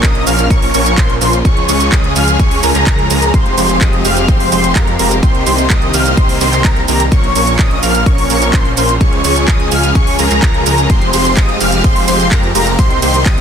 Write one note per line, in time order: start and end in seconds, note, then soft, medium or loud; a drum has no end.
0.00 0.24 A#1 loud
0.00 0.24 F3 medium
0.00 0.24 A#3 medium
0.00 3.30 C#4 medium
0.00 0.24 C#4 medium
0.00 3.30 F4 medium
0.00 1.41 A#4 medium
0.00 0.24 A#4 medium
0.00 0.24 D#5 medium
0.00 0.24 D#6 medium
0.00 kick loud
0.00 clap loud
0.00 closed hi-hat medium
0.00 shaker soft
0.15 closed hi-hat soft
0.27 0.48 A#1 loud
0.27 0.48 F3 medium
0.27 0.48 A#3 medium
0.27 0.48 C#4 medium
0.27 0.48 A#4 medium
0.27 0.48 F5 medium
0.27 0.48 F6 loud
0.27 open hi-hat loud
0.27 shaker medium
0.39 closed hi-hat medium
0.39 shaker soft
0.50 0.72 A#1 loud
0.50 0.71 F3 medium
0.50 0.71 A#3 medium
0.50 0.71 C#4 medium
0.50 0.71 A#4 medium
0.50 0.71 C#5 medium
0.50 0.71 C#6 medium
0.50 kick loud
0.50 closed hi-hat medium
0.50 shaker soft
0.62 open hi-hat medium
0.74 0.95 A#1 loud
0.74 0.95 F3 loud
0.74 0.95 A#3 medium
0.74 0.95 C#4 medium
0.74 0.95 A#4 medium
0.74 0.95 C#5 loud
0.74 0.95 C#6 loud
0.74 open hi-hat loud
0.74 shaker medium
0.86 closed hi-hat medium
0.86 shaker soft
0.98 1.19 A#1 loud
0.98 1.14 F3 medium
0.98 1.14 A#3 medium
0.98 1.14 C#4 medium
0.98 1.13 A#4 medium
0.98 1.14 C5 loud
0.98 1.13 C6 medium
0.98 kick loud
0.98 clap loud
0.98 closed hi-hat medium
0.98 shaker soft
1.10 closed hi-hat soft
1.21 1.43 A#1 loud
1.21 1.37 F3 medium
1.21 1.37 A#3 medium
1.21 1.37 C#4 medium
1.21 1.37 A#4 medium
1.21 1.37 C5 medium
1.21 1.37 C6 medium
1.21 open hi-hat loud
1.21 shaker medium
1.33 closed hi-hat medium
1.33 shaker soft
1.45 1.66 C#2 loud
1.45 3.32 C#3 medium
1.45 1.66 F3 medium
1.45 1.66 G#3 medium
1.45 1.66 C#4 medium
1.45 3.32 G#4 medium
1.45 1.66 G#4 medium
1.45 1.66 C#5 medium
1.45 3.32 G#5 medium
1.45 1.66 C#6 medium
1.45 kick loud
1.45 closed hi-hat medium
1.45 shaker soft
1.57 closed hi-hat soft
1.69 1.90 C#2 loud
1.69 1.89 F3 medium
1.69 1.89 G#3 medium
1.69 1.89 C#4 medium
1.69 1.89 G#4 medium
1.69 1.89 C#5 loud
1.69 1.89 C#6 loud
1.69 open hi-hat loud
1.69 shaker medium
1.80 closed hi-hat medium
1.80 shaker soft
1.92 2.13 C#2 loud
1.92 2.13 F3 medium
1.92 2.13 G#3 medium
1.92 2.13 C#4 medium
1.92 2.13 G#4 medium
1.92 2.13 D#5 medium
1.92 2.13 D#6 medium
1.92 kick loud
1.92 clap loud
1.92 closed hi-hat medium
1.92 shaker soft
2.04 closed hi-hat soft
2.16 2.37 C#2 loud
2.16 2.37 F3 medium
2.16 2.37 G#3 medium
2.16 2.37 C#4 medium
2.16 2.37 G#4 medium
2.16 2.37 F5 medium
2.16 2.37 F6 loud
2.16 open hi-hat loud
2.16 shaker medium
2.28 closed hi-hat medium
2.28 shaker soft
2.39 2.61 C#2 loud
2.39 2.60 F3 medium
2.39 2.60 G#3 medium
2.39 2.60 C#4 medium
2.39 2.60 G#4 medium
2.39 2.60 C#5 medium
2.39 2.60 C#6 medium
2.39 kick loud
2.39 closed hi-hat medium
2.39 shaker soft
2.51 open hi-hat medium
2.63 2.72 C#2 loud
2.63 2.72 F3 medium
2.63 2.72 G#3 medium
2.63 2.72 C#4 medium
2.63 2.72 G#4 medium
2.63 2.72 A#4 loud
2.63 2.72 A#5 loud
2.63 open hi-hat loud
2.63 shaker medium
2.75 2.84 C#2 loud
2.75 2.84 F3 medium
2.75 2.84 G#3 medium
2.75 2.84 C#4 medium
2.75 2.84 G#4 medium
2.75 2.84 A#4 loud
2.75 2.84 A#5 loud
2.75 clap soft
2.75 closed hi-hat medium
2.75 shaker soft
2.87 3.08 C#2 loud
2.87 3.07 F3 medium
2.87 3.07 G#3 medium
2.87 3.07 C#4 medium
2.87 3.07 G#4 medium
2.87 3.07 A#4 loud
2.87 3.07 A#5 loud
2.87 kick loud
2.87 clap loud
2.87 closed hi-hat medium
2.87 shaker soft
2.99 closed hi-hat soft
3.10 3.32 C#2 loud
3.10 3.31 F3 medium
3.10 3.31 G#3 medium
3.10 3.31 C#4 medium
3.10 3.31 G#4 medium
3.10 3.31 A#4 loud
3.10 3.31 A#5 loud
3.10 open hi-hat loud
3.10 shaker medium
3.22 closed hi-hat medium
3.22 shaker soft
3.34 3.55 F1 loud
3.34 5.21 F3 medium
3.34 3.55 F3 medium
3.34 3.55 G#3 medium
3.34 3.55 C4 medium
3.34 5.21 C4 medium
3.34 7.08 G4 medium
3.34 3.55 G4 medium
3.34 5.21 G#4 medium
3.34 3.55 C5 medium
3.34 5.21 F5 medium
3.34 3.55 C6 medium
3.34 kick loud
3.34 closed hi-hat medium
3.34 shaker soft
3.46 closed hi-hat soft
3.57 3.79 F1 loud
3.57 3.78 F3 medium
3.57 3.78 G#3 medium
3.57 3.78 C4 medium
3.57 3.78 G4 medium
3.57 3.78 C5 loud
3.57 3.78 C6 loud
3.57 open hi-hat loud
3.57 shaker medium
3.69 closed hi-hat medium
3.69 shaker soft
3.81 4.02 F1 loud
3.81 4.02 F3 medium
3.81 4.02 G#3 medium
3.81 4.02 C4 medium
3.81 4.02 G4 medium
3.81 4.02 D#5 medium
3.81 4.02 D#6 medium
3.81 kick loud
3.81 clap loud
3.81 closed hi-hat medium
3.81 shaker soft
3.93 closed hi-hat soft
4.05 4.26 F1 loud
4.05 4.26 F3 medium
4.05 4.26 G#3 medium
4.05 4.26 C4 medium
4.05 4.26 G4 medium
4.05 4.26 F5 medium
4.05 4.26 F6 loud
4.05 open hi-hat loud
4.05 shaker medium
4.17 closed hi-hat medium
4.17 shaker soft
4.28 4.50 F1 loud
4.28 4.49 F3 medium
4.28 4.49 G#3 medium
4.28 4.49 C4 medium
4.28 4.49 G4 medium
4.28 4.49 C5 medium
4.28 4.49 C6 medium
4.28 kick loud
4.28 closed hi-hat medium
4.28 shaker soft
4.40 open hi-hat medium
4.52 4.73 F1 loud
4.52 4.73 F3 medium
4.52 4.73 G#3 medium
4.52 4.73 C4 medium
4.52 4.73 G4 medium
4.52 4.73 C5 loud
4.52 4.73 C6 loud
4.52 open hi-hat loud
4.52 shaker medium
4.64 closed hi-hat medium
4.64 shaker soft
4.76 4.97 F2 loud
4.76 4.91 F3 medium
4.76 4.91 G#3 medium
4.76 4.92 C4 medium
4.76 4.91 G4 medium
4.76 4.91 A#4 loud
4.76 4.91 A#5 loud
4.76 kick loud
4.76 clap loud
4.76 closed hi-hat medium
4.76 shaker soft
4.87 closed hi-hat soft
4.99 5.20 F1 loud
4.99 5.15 F3 medium
4.99 5.15 G#3 medium
4.99 5.15 C4 medium
4.99 5.15 G4 medium
4.99 5.15 A#4 medium
4.99 5.15 A#5 medium
4.99 open hi-hat loud
4.99 shaker medium
5.11 closed hi-hat medium
5.11 shaker soft
5.23 5.44 C2 loud
5.23 7.10 C3 medium
5.23 5.44 D#3 medium
5.23 5.44 A#3 medium
5.23 5.44 C4 medium
5.23 7.10 C4 medium
5.23 5.44 G4 medium
5.23 8.97 A#4 medium
5.23 5.44 C5 medium
5.23 7.10 D#5 medium
5.23 5.44 C6 medium
5.23 kick loud
5.23 closed hi-hat medium
5.23 shaker soft
5.35 closed hi-hat soft
5.46 5.68 C2 loud
5.46 5.67 D#3 medium
5.46 5.67 A#3 medium
5.46 5.67 C4 medium
5.46 5.67 G4 medium
5.46 5.67 C5 loud
5.46 5.67 C6 loud
5.46 open hi-hat loud
5.46 shaker medium
5.58 closed hi-hat medium
5.58 shaker soft
5.70 5.91 C2 loud
5.70 5.91 D#3 medium
5.70 5.91 A#3 medium
5.70 5.91 C4 medium
5.70 5.91 G4 medium
5.70 5.91 D#5 medium
5.70 5.91 D#6 medium
5.70 kick loud
5.70 clap loud
5.70 closed hi-hat medium
5.70 shaker soft
5.82 closed hi-hat soft
5.94 6.15 C2 loud
5.94 6.15 D#3 medium
5.94 6.15 A#3 medium
5.94 6.15 C4 medium
5.94 6.15 G4 medium
5.94 6.15 F5 medium
5.94 6.14 F6 loud
5.94 open hi-hat loud
5.94 shaker medium
6.06 closed hi-hat medium
6.06 shaker soft
6.17 6.39 C2 loud
6.17 6.38 D#3 medium
6.17 6.38 A#3 medium
6.17 6.38 C4 medium
6.17 6.38 G4 medium
6.17 6.38 C5 medium
6.17 6.38 C6 medium
6.17 kick loud
6.17 closed hi-hat medium
6.17 shaker soft
6.29 open hi-hat medium
6.41 6.62 C2 loud
6.41 6.62 D#3 loud
6.41 6.62 A#3 medium
6.41 6.62 C4 medium
6.41 6.62 G4 medium
6.41 6.62 C5 loud
6.41 6.62 C6 loud
6.41 open hi-hat loud
6.41 shaker medium
6.53 clap soft
6.53 closed hi-hat medium
6.53 shaker soft
6.65 6.86 C2 loud
6.65 6.80 D#3 medium
6.65 6.80 A#3 medium
6.65 6.80 C4 medium
6.65 6.80 G4 medium
6.65 6.80 A#4 medium
6.65 6.80 A#5 loud
6.65 kick loud
6.65 clap loud
6.65 closed hi-hat medium
6.65 shaker soft
6.76 closed hi-hat soft
6.88 7.09 C2 loud
6.88 7.04 D#3 medium
6.88 7.04 A#3 medium
6.88 7.04 C4 medium
6.88 7.04 G4 medium
6.88 7.04 A#4 medium
6.88 7.04 A#5 medium
6.88 open hi-hat loud
6.88 shaker medium
7.00 closed hi-hat medium
7.00 shaker soft
7.12 7.33 A#1 loud
7.12 7.33 F3 medium
7.12 7.33 A#3 medium
7.12 10.86 C#4 medium
7.12 7.33 C#4 medium
7.12 10.86 F4 medium
7.12 7.33 A#4 medium
7.12 7.33 C#5 medium
7.12 7.33 C#6 medium
7.12 kick loud
7.12 closed hi-hat medium
7.12 shaker soft
7.24 closed hi-hat soft
7.35 7.57 A#1 loud
7.35 7.56 F3 medium
7.35 7.56 A#3 medium
7.35 7.56 C#4 medium
7.35 7.56 A#4 medium
7.35 7.56 C#5 loud
7.35 7.56 C#6 loud
7.35 open hi-hat loud
7.35 shaker medium
7.47 closed hi-hat medium
7.47 shaker soft
7.59 7.80 A#1 loud
7.59 7.80 F3 medium
7.59 7.80 A#3 medium
7.59 7.80 C#4 medium
7.59 7.80 A#4 medium
7.59 7.80 D#5 medium
7.59 7.80 D#6 medium
7.59 kick loud
7.59 clap loud
7.59 closed hi-hat medium
7.59 shaker soft
7.71 closed hi-hat soft
7.83 8.04 A#1 loud
7.83 8.04 F3 medium
7.83 8.04 A#3 medium
7.83 8.04 C#4 medium
7.83 8.04 A#4 medium
7.83 8.04 F5 medium
7.83 8.03 F6 loud
7.83 open hi-hat loud
7.83 shaker medium
7.95 closed hi-hat medium
7.95 shaker soft
8.06 8.28 A#1 loud
8.06 8.27 F3 medium
8.06 8.27 A#3 medium
8.06 8.27 C#4 medium
8.06 8.27 A#4 medium
8.06 8.27 C#5 medium
8.06 8.27 C#6 medium
8.06 kick loud
8.06 closed hi-hat medium
8.06 shaker soft
8.18 open hi-hat medium
8.30 8.51 A#1 loud
8.30 8.51 F3 loud
8.30 8.51 A#3 medium
8.30 8.51 C#4 medium
8.30 8.51 A#4 medium
8.30 8.51 C#5 loud
8.30 8.51 C#6 loud
8.30 open hi-hat loud
8.30 shaker medium
8.42 closed hi-hat medium
8.42 shaker soft
8.54 8.75 A#1 loud
8.54 8.69 F3 medium
8.54 8.69 A#3 medium
8.54 8.69 C#4 medium
8.54 8.69 A#4 medium
8.54 8.69 C5 loud
8.54 8.69 C6 medium
8.54 kick loud
8.54 clap loud
8.54 closed hi-hat medium
8.54 shaker soft
8.65 closed hi-hat soft
8.77 8.98 A#1 loud
8.77 8.93 F3 medium
8.77 8.93 A#3 medium
8.77 8.93 C#4 medium
8.77 8.93 A#4 medium
8.77 8.93 C5 medium
8.77 8.93 C6 medium
8.77 open hi-hat loud
8.77 shaker medium
8.89 closed hi-hat medium
8.89 shaker soft
9.01 9.22 C#2 loud
9.01 10.88 C#3 medium
9.01 9.22 F3 medium
9.01 9.22 G#3 medium
9.01 9.22 C#4 medium
9.01 12.75 G#4 medium
9.01 9.22 G#4 medium
9.01 9.22 C#5 medium
9.01 10.88 G#5 medium
9.01 9.22 C#6 medium
9.01 kick loud
9.01 closed hi-hat medium
9.01 shaker soft
9.13 closed hi-hat soft
9.24 9.46 C#2 loud
9.24 9.45 F3 medium
9.24 9.45 G#3 medium
9.24 9.45 C#4 medium
9.24 9.45 G#4 medium
9.24 9.45 C#5 loud
9.24 9.45 C#6 loud
9.24 open hi-hat loud
9.24 shaker medium
9.36 closed hi-hat medium
9.36 shaker soft
9.48 9.69 C#2 loud
9.48 9.69 F3 medium
9.48 9.69 G#3 medium
9.48 9.69 C#4 medium
9.48 9.69 G#4 medium
9.48 9.69 D#5 medium
9.48 9.69 D#6 medium
9.48 kick loud
9.48 clap loud
9.48 closed hi-hat medium
9.48 shaker soft
9.60 closed hi-hat soft
9.72 9.93 C#2 loud
9.72 9.92 F3 medium
9.72 9.92 G#3 medium
9.72 9.92 C#4 medium
9.72 9.92 G#4 medium
9.72 9.92 F5 loud
9.72 9.93 F6 loud
9.72 open hi-hat loud
9.72 shaker medium
9.83 closed hi-hat soft
9.83 shaker soft
9.95 10.17 C#2 loud
9.95 10.16 F3 medium
9.95 10.16 G#3 medium
9.95 10.16 C#4 medium
9.95 10.16 G#4 medium
9.95 10.16 C#5 medium
9.95 10.16 C#6 medium
9.95 kick loud
9.95 closed hi-hat medium
9.95 shaker soft
10.07 open hi-hat medium
10.19 10.28 C#2 loud
10.19 10.28 F3 medium
10.19 10.28 G#3 medium
10.19 10.28 C#4 medium
10.19 10.28 G#4 medium
10.19 10.28 A#4 loud
10.19 10.28 A#5 loud
10.19 open hi-hat loud
10.19 shaker medium
10.31 10.40 C#2 loud
10.31 10.40 F3 medium
10.31 10.40 G#3 medium
10.31 10.40 C#4 medium
10.31 10.40 G#4 medium
10.31 10.40 A#4 loud
10.31 10.40 A#5 loud
10.31 clap soft
10.31 closed hi-hat medium
10.31 shaker soft
10.42 10.64 C#2 loud
10.42 10.63 F3 medium
10.42 10.63 G#3 medium
10.42 10.63 C#4 medium
10.42 10.63 G#4 medium
10.42 10.63 A#4 loud
10.42 10.63 A#5 medium
10.42 kick loud
10.42 clap loud
10.42 closed hi-hat medium
10.42 shaker soft
10.54 closed hi-hat soft
10.66 10.87 C#2 loud
10.66 10.87 F3 medium
10.66 10.87 G#3 medium
10.66 10.87 C#4 medium
10.66 10.87 G#4 medium
10.66 10.87 A#4 loud
10.66 10.87 A#5 loud
10.66 open hi-hat loud
10.66 shaker medium
10.78 closed hi-hat medium
10.78 shaker soft
10.90 11.11 F1 loud
10.90 12.77 F3 medium
10.90 11.11 F3 medium
10.90 11.11 G#3 medium
10.90 13.41 C4 medium
10.90 11.11 C4 medium
10.90 13.41 G4 medium
10.90 11.11 G4 medium
10.90 11.11 C5 medium
10.90 12.77 F5 medium
10.90 11.11 C6 medium
10.90 kick loud
10.90 closed hi-hat medium
10.90 ride medium
10.90 shaker soft
11.02 closed hi-hat soft
11.13 11.35 F1 loud
11.13 11.34 F3 medium
11.13 11.34 G#3 medium
11.13 11.34 C4 medium
11.13 11.34 G4 medium
11.13 11.34 C5 loud
11.13 11.34 C6 loud
11.13 open hi-hat loud
11.13 ride medium
11.13 shaker medium
11.25 closed hi-hat soft
11.25 shaker soft
11.37 11.58 F1 loud
11.37 11.58 F3 medium
11.37 11.58 G#3 medium
11.37 11.58 C4 medium
11.37 11.58 G4 medium
11.37 11.58 D#5 medium
11.37 11.58 D#6 medium
11.37 kick loud
11.37 clap loud
11.37 closed hi-hat medium
11.37 ride medium
11.37 shaker soft
11.49 closed hi-hat soft
11.61 11.82 F1 loud
11.61 11.81 F3 medium
11.61 11.81 G#3 medium
11.61 11.81 C4 medium
11.61 11.81 G4 medium
11.61 11.81 F5 medium
11.61 11.81 F6 loud
11.61 open hi-hat loud
11.61 ride medium
11.61 shaker medium
11.72 closed hi-hat medium
11.72 shaker soft
11.84 12.06 F1 loud
11.84 12.05 F3 medium
11.84 12.05 G#3 medium
11.84 12.05 C4 medium
11.84 12.05 G4 medium
11.84 12.05 C5 medium
11.84 12.05 C6 medium
11.84 kick loud
11.84 closed hi-hat medium
11.84 ride medium
11.84 shaker soft
11.96 open hi-hat medium
12.08 12.29 F1 loud
12.08 12.29 F3 loud
12.08 12.29 G#3 medium
12.08 12.29 C4 medium
12.08 12.29 G4 medium
12.08 12.29 C5 loud
12.08 12.29 C6 loud
12.08 open hi-hat loud
12.08 ride medium
12.08 shaker medium
12.20 closed hi-hat medium
12.20 shaker soft
12.31 12.53 F2 loud
12.31 12.47 F3 medium
12.31 12.47 G#3 medium
12.31 12.47 C4 medium
12.31 12.47 G4 medium
12.31 12.47 A#4 medium
12.31 12.47 A#5 medium
12.31 kick loud
12.31 clap loud
12.31 closed hi-hat medium
12.31 ride medium
12.31 shaker soft
12.43 closed hi-hat soft
12.55 12.76 F1 loud
12.55 12.71 F3 medium
12.55 12.71 G#3 medium
12.55 12.71 C4 medium
12.55 12.71 G4 medium
12.55 12.71 A#4 medium
12.55 12.71 A#5 medium
12.55 open hi-hat loud
12.55 ride medium
12.55 shaker medium
12.67 closed hi-hat medium
12.67 shaker soft
12.79 13.00 C2 loud
12.79 13.41 C3 medium
12.79 13.00 D#3 medium
12.79 13.00 A#3 medium
12.79 13.00 C4 medium
12.79 13.00 G4 medium
12.79 13.41 A#4 medium
12.79 13.00 C5 medium
12.79 13.41 D#5 medium
12.79 13.00 C6 medium
12.79 kick loud
12.79 closed hi-hat medium
12.79 ride medium
12.79 shaker soft
12.91 closed hi-hat soft
13.02 13.24 C2 loud
13.02 13.23 D#3 medium
13.02 13.23 A#3 medium
13.02 13.23 C4 medium
13.02 13.23 G4 medium
13.02 13.23 C5 loud
13.02 13.23 C6 loud
13.02 open hi-hat loud
13.02 ride medium
13.02 shaker medium
13.14 closed hi-hat medium
13.14 shaker soft
13.26 13.41 C2 loud
13.26 13.41 D#3 medium
13.26 13.41 A#3 medium
13.26 13.41 C4 medium
13.26 13.41 G4 medium
13.26 13.41 D#5 medium
13.26 13.41 D#6 medium
13.26 kick loud
13.26 clap loud
13.26 closed hi-hat medium
13.26 ride medium
13.26 shaker soft
13.38 closed hi-hat soft